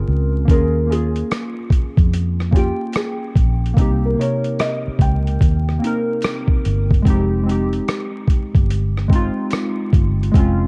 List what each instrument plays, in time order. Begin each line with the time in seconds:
Already playing: synth keys C4 C#4 F4 G#4 A#4
0.08 fingered electric bass C#2
0.45 fingered electric bass D#2, synth keys A#3 C#4, kick
0.49 synth keys F4 G#4, felt piano A#4, closed hi-hat
0.87 synth keys A#3 C#4, felt piano G#4
0.92 synth keys F4 G#4, closed hi-hat
1.16 closed hi-hat
1.31 cross-stick, closed hi-hat, tambourine
1.70 kick, closed hi-hat
1.97 fingered electric bass F2, kick, closed hi-hat
2.14 closed hi-hat
2.40 cross-stick
2.51 synth keys A#3 C#4, felt piano G4, kick
2.56 synth keys F4 G5, closed hi-hat
2.93 felt piano G#4, cross-stick, closed hi-hat, tambourine
3.36 fingered electric bass A#1, kick, closed hi-hat
3.66 closed hi-hat
3.74 fingered electric bass C2, synth keys A#3 C4, kick
3.78 synth keys D#4 G4, closed hi-hat
4.05 felt piano A#4
4.14 synth keys C3 A#3
4.19 synth keys D#4 A#4, felt piano C#5, closed hi-hat
4.44 closed hi-hat
4.59 felt piano D#5, cross-stick, closed hi-hat, tambourine
4.88 muted fingered electric bass stroke
4.99 fingered electric bass C#2, felt piano G5, kick, closed hi-hat
5.27 closed hi-hat
5.41 fingered electric bass D#2, kick, closed hi-hat
5.69 cross-stick
5.79 synth keys A#3 C4
5.84 synth keys D#4 A#4, closed hi-hat
6.22 cross-stick, closed hi-hat, tambourine
6.48 kick
6.65 fingered electric bass G1, closed hi-hat
6.91 kick, closed hi-hat
7.02 fingered electric bass F1, synth keys G#3 C4, kick
7.07 synth keys D#4 G4, closed hi-hat
7.43 synth keys G#3 C4
7.48 synth keys D#4 G4, closed hi-hat
7.73 closed hi-hat
7.88 cross-stick, closed hi-hat, tambourine
8.28 kick, closed hi-hat
8.55 fingered electric bass G1, kick, closed hi-hat
8.70 closed hi-hat
8.97 cross-stick
9.08 synth keys G#3 C4, kick
9.13 synth keys D#4 F4, closed hi-hat
9.51 cross-stick, closed hi-hat, tambourine
9.93 fingered electric bass G1, kick, closed hi-hat
10.23 closed hi-hat
10.32 fingered electric bass F1, synth keys G#3 C4, kick, closed hi-hat
10.37 synth keys C#4 F4